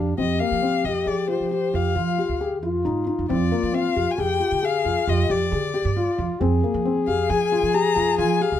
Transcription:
Already playing: F2 D4 G4
0.17 F2 C4 G4 D#5
0.39 A#3 F5
0.51 F3
0.62 C4
0.84 F2 G4 D#5
1.06 F3 G#4 D5
1.28 F4 C5
1.40 F3
1.51 G4 C5
1.73 F2 F4 F5
1.96 F3 F4
2.18 G4
2.29 D2
2.40 G4 G#4
2.62 F2 F4
2.85 G#2 D#4
3.07 D#4
3.19 F2
3.29 F2 C4 F4 D5
3.52 A#3
3.63 F3
3.73 C4 F5
3.95 F2 G4
4.11 G#5
4.18 F2 G4 G#4 G5
4.40 F4
4.52 D3
4.62 G4 G#4 F5
4.85 F2 F4
5.07 F2 F4 G4 D#5
5.30 F2 G4 D5
5.52 D3 G#4
5.74 G4
5.85 G2
5.96 F4
6.18 F2 F4
6.40 F2 C4 G#4
6.63 A#3
6.74 F3
6.85 C4
7.07 F2 G4 F5
7.30 F3 G#4 G#5
7.52 F4
7.63 F3
7.74 G4 A#5
7.96 F2 F4
8.18 F3 F4 G#5
8.41 G4 F5
8.52 D2

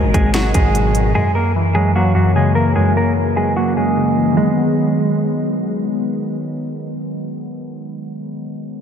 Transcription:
Already playing: G#2 B2 D#3 F#3 G#3
0.04 G#1
0.14 G#1 F#3 G#3 G#4, kick, closed hi-hat
0.34 F#3 G#3 F#4, finger snap, snare, closed hi-hat
0.54 G#1 G#2 G#3 G#4, kick, closed hi-hat
0.75 B2, closed hi-hat
0.95 D#3, closed hi-hat
1.14 F#2 G#3 G#4
1.35 A#3 A#4
1.55 E3
1.75 F#3 G#3 G#4
1.95 F#3 A#3 F#4
2.15 F#2 F#3 F#4
2.35 C#3 G#3 G#4
2.55 E3 A#3 A#4
2.76 F#2 G#3 G#4
2.97 A#3 A#4
3.16 E3
3.37 F#3 G#3 G#4
3.57 F#3 A#3 F#4
3.77 F#2 G#3 G#4
3.96 C#3
4.17 E3
4.31 D#3 F#3
4.37 G#3
4.43 B3

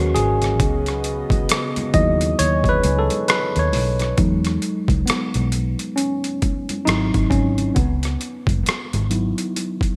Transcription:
Already playing: D#2 F#3 G#3 A#3 C#4 E4 F#4 G#4 A#4 B4 C#5
0.14 G#1 G#4, closed hi-hat, muted conga, low conga
0.42 cross-stick, closed hi-hat, low conga
0.59 C#2 C#3 B3 D#5, kick, closed hi-hat, muted conga
0.86 cross-stick, closed hi-hat
1.04 closed hi-hat
1.30 muted fingered electric bass stroke, kick, closed hi-hat, high conga
1.49 cross-stick, closed hi-hat
1.76 closed hi-hat, high conga, low conga
1.93 D#2 F#3 B3 D#4 E4 D#5, kick, closed hi-hat
2.21 closed hi-hat
2.38 D#2 G#4 C#5, closed hi-hat
2.64 kick, closed hi-hat
2.69 B4
2.84 C#2, closed hi-hat, high conga
2.99 A4
3.10 closed hi-hat, high conga
3.28 B4, cross-stick, closed hi-hat
3.56 D#2 C#5, closed hi-hat
3.73 B1, open hi-hat, muted conga, high conga, low conga
3.99 cross-stick, closed hi-hat, low conga
4.17 E2 F#3 G#3 D#4, kick, closed hi-hat
4.45 cross-stick, closed hi-hat
4.62 closed hi-hat
4.88 C#2, kick, closed hi-hat, high conga
5.06 B3, muted fingered electric bass stroke, closed hi-hat, muted conga
5.10 cross-stick
5.34 B1, closed hi-hat, high conga, low conga
5.52 closed hi-hat, muted conga
5.79 closed hi-hat
5.96 C#4, closed hi-hat
6.24 closed hi-hat
6.42 kick, closed hi-hat, high conga
6.69 closed hi-hat, high conga
6.85 G#1 F#3 C4 D#4 E4, cross-stick, closed hi-hat, muted conga
7.14 G#1, kick, closed hi-hat
7.30 G#1 C#4, kick, closed hi-hat, muted conga, high conga, low conga
7.58 closed hi-hat, low conga
7.75 C#2 B3, kick, closed hi-hat, muted conga
8.03 cross-stick, closed hi-hat
8.21 closed hi-hat
8.47 F#1, kick, closed hi-hat, high conga
8.66 muted fingered electric bass stroke, cross-stick, closed hi-hat, muted conga
8.93 G#1, closed hi-hat, high conga, low conga
9.10 F#3 B3 D#4 E4, closed hi-hat, muted conga
9.38 closed hi-hat
9.56 closed hi-hat, muted conga
9.81 kick, closed hi-hat

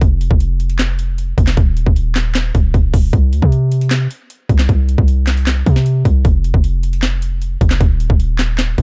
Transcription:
0.01 F1, kick, closed hi-hat
0.21 closed hi-hat
0.31 F1, kick
0.40 closed hi-hat
0.60 closed hi-hat
0.70 closed hi-hat
0.79 snare, clap, closed hi-hat
0.99 closed hi-hat
1.18 closed hi-hat
1.38 F1, kick, closed hi-hat
1.47 snare, clap
1.57 D#1, kick, closed hi-hat
1.77 closed hi-hat
1.86 D#1, kick
1.96 closed hi-hat
2.16 snare, clap, closed hi-hat
2.35 snare, clap, closed hi-hat
2.55 D#1, kick, closed hi-hat
2.74 D#1, kick, closed hi-hat
2.94 D#1, kick, open hi-hat
3.13 C2, kick, closed hi-hat
3.33 D2, closed hi-hat
3.42 C3, kick
3.52 closed hi-hat
3.72 closed hi-hat
3.81 closed hi-hat
3.91 snare, clap, closed hi-hat
4.11 closed hi-hat
4.30 closed hi-hat
4.49 C2, kick, closed hi-hat
4.59 snare, clap
4.69 C2, kick, closed hi-hat
4.89 closed hi-hat
4.98 C2, kick
5.08 closed hi-hat
5.27 snare, clap, closed hi-hat
5.37 closed hi-hat
5.47 snare, clap, closed hi-hat
5.66 C3, kick, closed hi-hat
5.76 snare
5.86 closed hi-hat
6.05 C2, kick, closed hi-hat
6.25 F1, kick, closed hi-hat
6.44 closed hi-hat
6.54 F1, kick
6.64 closed hi-hat
6.83 closed hi-hat
6.93 closed hi-hat
7.03 snare, clap, closed hi-hat
7.22 closed hi-hat
7.42 closed hi-hat
7.61 F1, kick, closed hi-hat
7.71 snare, clap
7.81 D#1, kick, closed hi-hat
8.00 closed hi-hat
8.10 D#1, kick
8.20 closed hi-hat
8.39 snare, clap, closed hi-hat
8.59 snare, clap, closed hi-hat
8.78 D#1, kick, closed hi-hat

